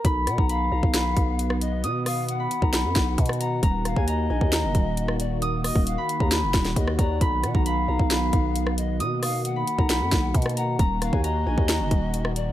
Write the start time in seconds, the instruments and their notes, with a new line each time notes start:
Already playing: harp A#4 D#5
0.05 808-style bass B1, analog synth pad D#3 B3 F#4, harp B5, kick, closed hi-hat
0.27 808-style bass B2, pan flute F#5, cross-stick, closed hi-hat
0.38 808-style bass B1, harp A#5, kick
0.49 pan flute F5, harp B5, closed hi-hat
0.72 808-style bass B1, harp A#5
0.83 808-style bass B1, kick
0.94 harp B5, snare, closed hi-hat
1.17 808-style bass B1, kick, closed hi-hat
1.39 closed hi-hat
1.50 cross-stick
1.61 pan flute D#5, closed hi-hat
1.84 808-style bass B2, harp D#6, closed hi-hat
2.06 pan flute F5, harp D#6, cross-stick, open hi-hat
2.29 pan flute F#5, closed hi-hat
2.40 harp B5
2.51 closed hi-hat
2.62 808-style bass B1, harp A#5, kick
2.73 harp B5, snare, closed hi-hat
2.85 808-style bass F#2
2.96 808-style bass B1, kick, snare, closed hi-hat
3.18 808-style bass B2, kick, closed hi-hat
3.26 cross-stick, closed hi-hat
3.33 closed hi-hat
3.41 pan flute F#5, harp A#5, closed hi-hat
3.63 808-style bass D#1, analog synth pad A#3, harp A#5, kick, closed hi-hat
3.85 pan flute F5, cross-stick, closed hi-hat
3.96 808-style bass D#2, harp G#5, kick
4.08 pan flute D#5, harp A#5, closed hi-hat
4.30 808-style bass A#1, harp G#5
4.41 808-style bass D#2, kick
4.52 harp A#5, snare, closed hi-hat
4.64 808-style bass F#1
4.75 808-style bass D#1, kick, closed hi-hat
4.97 closed hi-hat
5.08 cross-stick
5.19 pan flute D5, closed hi-hat
5.42 harp D#6, closed hi-hat
5.64 pan flute D#5, harp D#6, cross-stick, open hi-hat
5.76 808-style bass D#1, kick
5.87 pan flute F5, closed hi-hat
5.98 harp B5
6.09 closed hi-hat
6.20 808-style bass D#2, harp A#5, kick
6.32 harp B5, snare, closed hi-hat
6.43 808-style bass F1
6.54 808-style bass D#1, kick, snare, closed hi-hat
6.65 snare, closed hi-hat
6.76 808-style bass D#2, pan flute D#5, kick, closed hi-hat
6.88 cross-stick
6.99 808-style bass D#2, pan flute D5, harp A#5, kick, closed hi-hat
7.21 808-style bass B1, analog synth pad B3, harp B5, kick, closed hi-hat
7.43 808-style bass B2, pan flute F#5, cross-stick, closed hi-hat
7.55 808-style bass B1, harp A#5, kick
7.66 pan flute F5, harp B5, closed hi-hat
7.88 808-style bass B1, harp A#5
7.99 808-style bass B1, kick
8.11 harp B5, snare, closed hi-hat
8.33 808-style bass B1, kick, closed hi-hat
8.56 closed hi-hat
8.67 cross-stick
8.78 pan flute D#5, closed hi-hat
9.00 808-style bass B2, analog synth pad A#3, harp D#6, closed hi-hat
9.23 pan flute F5, harp D#6, cross-stick, open hi-hat
9.45 pan flute F#5, closed hi-hat
9.56 harp B5
9.67 closed hi-hat
9.79 808-style bass B1, harp A#5, kick
9.90 harp B5, snare, closed hi-hat
10.01 808-style bass F#2
10.12 808-style bass B1, kick, snare, closed hi-hat
10.35 808-style bass B2, kick, closed hi-hat
10.42 cross-stick, closed hi-hat
10.49 closed hi-hat
10.57 pan flute F#5, harp A#5, closed hi-hat
10.79 808-style bass D#1, analog synth pad D#3 F#4, harp A#5, kick, closed hi-hat
11.02 pan flute F5, cross-stick, closed hi-hat
11.13 808-style bass D#2, harp G#5, kick
11.24 pan flute D#5, harp A#5, closed hi-hat
11.46 808-style bass A#1, harp G#5
11.58 808-style bass D#2, kick
11.69 harp A#5, snare, closed hi-hat
11.80 808-style bass F#1
11.91 808-style bass D#1, kick, closed hi-hat
12.14 closed hi-hat
12.25 cross-stick
12.36 pan flute D5, closed hi-hat